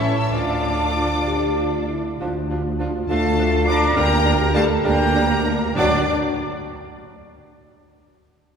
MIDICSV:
0, 0, Header, 1, 11, 480
1, 0, Start_track
1, 0, Key_signature, -1, "minor"
1, 0, Tempo, 627615
1, 244, Time_signature, 6, 3, 24, 8
1, 1682, Tempo, 585938
1, 3602, Tempo, 609137
1, 6771, End_track
2, 0, Start_track
2, 0, Title_t, "Violin section"
2, 0, Program_c, 0, 48
2, 11, Note_on_c, 0, 85, 100
2, 127, Note_off_c, 0, 85, 0
2, 141, Note_on_c, 0, 88, 85
2, 251, Note_off_c, 0, 88, 0
2, 256, Note_on_c, 0, 86, 102
2, 1453, Note_off_c, 0, 86, 0
2, 2418, Note_on_c, 0, 81, 102
2, 2861, Note_off_c, 0, 81, 0
2, 2896, Note_on_c, 0, 86, 127
2, 2962, Note_off_c, 0, 86, 0
2, 3124, Note_on_c, 0, 82, 127
2, 3592, Note_off_c, 0, 82, 0
2, 3611, Note_on_c, 0, 81, 117
2, 3674, Note_off_c, 0, 81, 0
2, 3847, Note_on_c, 0, 82, 121
2, 4565, Note_off_c, 0, 82, 0
2, 4575, Note_on_c, 0, 86, 105
2, 4841, Note_off_c, 0, 86, 0
2, 6771, End_track
3, 0, Start_track
3, 0, Title_t, "Flute"
3, 0, Program_c, 1, 73
3, 0, Note_on_c, 1, 81, 87
3, 1448, Note_off_c, 1, 81, 0
3, 2413, Note_on_c, 1, 77, 110
3, 2902, Note_on_c, 1, 82, 111
3, 2914, Note_off_c, 1, 77, 0
3, 3141, Note_on_c, 1, 79, 111
3, 3153, Note_off_c, 1, 82, 0
3, 3602, Note_off_c, 1, 79, 0
3, 3607, Note_on_c, 1, 77, 89
3, 3659, Note_off_c, 1, 77, 0
3, 3834, Note_on_c, 1, 79, 120
3, 4558, Note_off_c, 1, 79, 0
3, 4577, Note_on_c, 1, 74, 90
3, 4842, Note_off_c, 1, 74, 0
3, 6771, End_track
4, 0, Start_track
4, 0, Title_t, "Violin section"
4, 0, Program_c, 2, 48
4, 0, Note_on_c, 2, 69, 78
4, 0, Note_on_c, 2, 76, 83
4, 230, Note_off_c, 2, 76, 0
4, 241, Note_off_c, 2, 69, 0
4, 246, Note_on_c, 2, 74, 68
4, 250, Note_on_c, 2, 69, 71
4, 1501, Note_off_c, 2, 69, 0
4, 1525, Note_off_c, 2, 74, 0
4, 2413, Note_on_c, 2, 81, 97
4, 2858, Note_off_c, 2, 81, 0
4, 2874, Note_on_c, 2, 86, 97
4, 3113, Note_off_c, 2, 86, 0
4, 3119, Note_on_c, 2, 82, 116
4, 3589, Note_off_c, 2, 82, 0
4, 3604, Note_on_c, 2, 81, 95
4, 3667, Note_off_c, 2, 81, 0
4, 3838, Note_on_c, 2, 82, 103
4, 4560, Note_off_c, 2, 82, 0
4, 4570, Note_on_c, 2, 74, 95
4, 4838, Note_off_c, 2, 74, 0
4, 6771, End_track
5, 0, Start_track
5, 0, Title_t, "Cor anglais"
5, 0, Program_c, 3, 69
5, 0, Note_on_c, 3, 73, 84
5, 252, Note_on_c, 3, 74, 69
5, 263, Note_off_c, 3, 73, 0
5, 1451, Note_off_c, 3, 74, 0
5, 2418, Note_on_c, 3, 69, 95
5, 2884, Note_on_c, 3, 74, 102
5, 2896, Note_off_c, 3, 69, 0
5, 3123, Note_off_c, 3, 74, 0
5, 3126, Note_on_c, 3, 70, 114
5, 3593, Note_off_c, 3, 70, 0
5, 3608, Note_on_c, 3, 69, 102
5, 3836, Note_off_c, 3, 69, 0
5, 3840, Note_on_c, 3, 70, 91
5, 4561, Note_off_c, 3, 70, 0
5, 4571, Note_on_c, 3, 62, 103
5, 4776, Note_off_c, 3, 62, 0
5, 6771, End_track
6, 0, Start_track
6, 0, Title_t, "French horn section"
6, 0, Program_c, 4, 60
6, 7, Note_on_c, 4, 61, 64
6, 8, Note_on_c, 4, 64, 70
6, 90, Note_off_c, 4, 61, 0
6, 90, Note_off_c, 4, 64, 0
6, 726, Note_on_c, 4, 65, 65
6, 728, Note_on_c, 4, 62, 68
6, 809, Note_off_c, 4, 65, 0
6, 811, Note_off_c, 4, 62, 0
6, 964, Note_on_c, 4, 67, 77
6, 1188, Note_off_c, 4, 67, 0
6, 1207, Note_on_c, 4, 65, 62
6, 1446, Note_on_c, 4, 64, 57
6, 1448, Note_off_c, 4, 65, 0
6, 1677, Note_off_c, 4, 64, 0
6, 1682, Note_on_c, 4, 65, 79
6, 1684, Note_on_c, 4, 62, 78
6, 3093, Note_off_c, 4, 65, 0
6, 3129, Note_on_c, 4, 67, 85
6, 4298, Note_off_c, 4, 62, 0
6, 4307, Note_off_c, 4, 67, 0
6, 4574, Note_on_c, 4, 66, 94
6, 4576, Note_on_c, 4, 62, 89
6, 4777, Note_off_c, 4, 66, 0
6, 4779, Note_off_c, 4, 62, 0
6, 6771, End_track
7, 0, Start_track
7, 0, Title_t, "Viola section"
7, 0, Program_c, 5, 48
7, 0, Note_on_c, 5, 61, 84
7, 0, Note_on_c, 5, 64, 83
7, 229, Note_off_c, 5, 64, 0
7, 244, Note_off_c, 5, 61, 0
7, 249, Note_on_c, 5, 62, 60
7, 251, Note_on_c, 5, 65, 64
7, 1526, Note_off_c, 5, 62, 0
7, 1527, Note_off_c, 5, 65, 0
7, 1687, Note_on_c, 5, 62, 69
7, 1688, Note_on_c, 5, 65, 70
7, 1753, Note_off_c, 5, 62, 0
7, 1754, Note_off_c, 5, 65, 0
7, 1928, Note_on_c, 5, 65, 66
7, 1930, Note_on_c, 5, 62, 62
7, 1994, Note_off_c, 5, 65, 0
7, 1996, Note_off_c, 5, 62, 0
7, 2172, Note_on_c, 5, 62, 73
7, 2172, Note_on_c, 5, 65, 75
7, 2238, Note_off_c, 5, 62, 0
7, 2238, Note_off_c, 5, 65, 0
7, 2415, Note_on_c, 5, 65, 83
7, 2419, Note_on_c, 5, 62, 82
7, 2481, Note_off_c, 5, 65, 0
7, 2485, Note_off_c, 5, 62, 0
7, 2657, Note_on_c, 5, 62, 85
7, 2658, Note_on_c, 5, 65, 79
7, 2723, Note_off_c, 5, 62, 0
7, 2724, Note_off_c, 5, 65, 0
7, 2889, Note_on_c, 5, 65, 78
7, 2893, Note_on_c, 5, 62, 82
7, 2955, Note_off_c, 5, 65, 0
7, 2958, Note_off_c, 5, 62, 0
7, 3124, Note_on_c, 5, 67, 83
7, 3125, Note_on_c, 5, 62, 85
7, 3190, Note_off_c, 5, 62, 0
7, 3190, Note_off_c, 5, 67, 0
7, 3364, Note_on_c, 5, 62, 83
7, 3366, Note_on_c, 5, 67, 70
7, 3429, Note_off_c, 5, 62, 0
7, 3432, Note_off_c, 5, 67, 0
7, 3603, Note_on_c, 5, 67, 85
7, 3604, Note_on_c, 5, 62, 87
7, 3666, Note_off_c, 5, 67, 0
7, 3667, Note_off_c, 5, 62, 0
7, 3836, Note_on_c, 5, 62, 93
7, 3838, Note_on_c, 5, 67, 90
7, 3899, Note_off_c, 5, 62, 0
7, 3901, Note_off_c, 5, 67, 0
7, 4084, Note_on_c, 5, 62, 85
7, 4084, Note_on_c, 5, 67, 86
7, 4147, Note_off_c, 5, 62, 0
7, 4147, Note_off_c, 5, 67, 0
7, 4328, Note_on_c, 5, 67, 64
7, 4331, Note_on_c, 5, 62, 68
7, 4391, Note_off_c, 5, 67, 0
7, 4394, Note_off_c, 5, 62, 0
7, 4571, Note_on_c, 5, 62, 80
7, 4572, Note_on_c, 5, 66, 80
7, 4839, Note_off_c, 5, 62, 0
7, 4840, Note_off_c, 5, 66, 0
7, 6771, End_track
8, 0, Start_track
8, 0, Title_t, "Clarinet"
8, 0, Program_c, 6, 71
8, 0, Note_on_c, 6, 76, 95
8, 234, Note_off_c, 6, 76, 0
8, 250, Note_on_c, 6, 77, 80
8, 1308, Note_off_c, 6, 77, 0
8, 1681, Note_on_c, 6, 62, 75
8, 1791, Note_off_c, 6, 62, 0
8, 1931, Note_on_c, 6, 62, 64
8, 2039, Note_off_c, 6, 62, 0
8, 2161, Note_on_c, 6, 62, 68
8, 2272, Note_off_c, 6, 62, 0
8, 2408, Note_on_c, 6, 62, 78
8, 2518, Note_off_c, 6, 62, 0
8, 2654, Note_on_c, 6, 62, 76
8, 2760, Note_off_c, 6, 62, 0
8, 2886, Note_on_c, 6, 62, 85
8, 2993, Note_off_c, 6, 62, 0
8, 3113, Note_on_c, 6, 62, 91
8, 3223, Note_off_c, 6, 62, 0
8, 3349, Note_on_c, 6, 62, 82
8, 3460, Note_off_c, 6, 62, 0
8, 3592, Note_on_c, 6, 62, 78
8, 3701, Note_off_c, 6, 62, 0
8, 3829, Note_on_c, 6, 62, 82
8, 3940, Note_off_c, 6, 62, 0
8, 4072, Note_on_c, 6, 62, 80
8, 4186, Note_off_c, 6, 62, 0
8, 4316, Note_on_c, 6, 62, 77
8, 4429, Note_off_c, 6, 62, 0
8, 4563, Note_on_c, 6, 62, 87
8, 4772, Note_off_c, 6, 62, 0
8, 6771, End_track
9, 0, Start_track
9, 0, Title_t, "Cello section"
9, 0, Program_c, 7, 48
9, 5, Note_on_c, 7, 61, 81
9, 121, Note_off_c, 7, 61, 0
9, 124, Note_on_c, 7, 64, 79
9, 172, Note_off_c, 7, 64, 0
9, 245, Note_on_c, 7, 62, 88
9, 1424, Note_off_c, 7, 62, 0
9, 2414, Note_on_c, 7, 57, 105
9, 2858, Note_off_c, 7, 57, 0
9, 2889, Note_on_c, 7, 62, 117
9, 3125, Note_off_c, 7, 62, 0
9, 3130, Note_on_c, 7, 58, 107
9, 3601, Note_on_c, 7, 57, 107
9, 3604, Note_off_c, 7, 58, 0
9, 3664, Note_off_c, 7, 57, 0
9, 3841, Note_on_c, 7, 58, 111
9, 4562, Note_off_c, 7, 58, 0
9, 4572, Note_on_c, 7, 62, 111
9, 4840, Note_off_c, 7, 62, 0
9, 6771, End_track
10, 0, Start_track
10, 0, Title_t, "Bassoon"
10, 0, Program_c, 8, 70
10, 0, Note_on_c, 8, 52, 96
10, 248, Note_on_c, 8, 53, 68
10, 260, Note_off_c, 8, 52, 0
10, 1449, Note_off_c, 8, 53, 0
10, 1691, Note_on_c, 8, 53, 77
10, 1799, Note_off_c, 8, 53, 0
10, 1935, Note_on_c, 8, 53, 67
10, 2043, Note_off_c, 8, 53, 0
10, 2177, Note_on_c, 8, 53, 76
10, 2285, Note_off_c, 8, 53, 0
10, 2417, Note_on_c, 8, 53, 76
10, 2524, Note_off_c, 8, 53, 0
10, 2656, Note_on_c, 8, 53, 81
10, 2762, Note_off_c, 8, 53, 0
10, 2890, Note_on_c, 8, 53, 69
10, 2996, Note_off_c, 8, 53, 0
10, 3122, Note_on_c, 8, 55, 86
10, 3229, Note_off_c, 8, 55, 0
10, 3359, Note_on_c, 8, 55, 79
10, 3467, Note_off_c, 8, 55, 0
10, 3601, Note_on_c, 8, 55, 79
10, 3707, Note_off_c, 8, 55, 0
10, 3840, Note_on_c, 8, 55, 78
10, 3948, Note_off_c, 8, 55, 0
10, 4083, Note_on_c, 8, 55, 77
10, 4195, Note_off_c, 8, 55, 0
10, 4329, Note_on_c, 8, 55, 56
10, 4440, Note_off_c, 8, 55, 0
10, 4576, Note_on_c, 8, 54, 90
10, 4779, Note_off_c, 8, 54, 0
10, 6771, End_track
11, 0, Start_track
11, 0, Title_t, "Double bass section"
11, 0, Program_c, 10, 48
11, 0, Note_on_c, 10, 33, 82
11, 238, Note_on_c, 10, 38, 78
11, 242, Note_off_c, 10, 33, 0
11, 1495, Note_off_c, 10, 38, 0
11, 1687, Note_on_c, 10, 38, 93
11, 2328, Note_off_c, 10, 38, 0
11, 2410, Note_on_c, 10, 38, 100
11, 3041, Note_off_c, 10, 38, 0
11, 3126, Note_on_c, 10, 38, 108
11, 3754, Note_off_c, 10, 38, 0
11, 3833, Note_on_c, 10, 38, 107
11, 4487, Note_off_c, 10, 38, 0
11, 4565, Note_on_c, 10, 38, 101
11, 4836, Note_off_c, 10, 38, 0
11, 6771, End_track
0, 0, End_of_file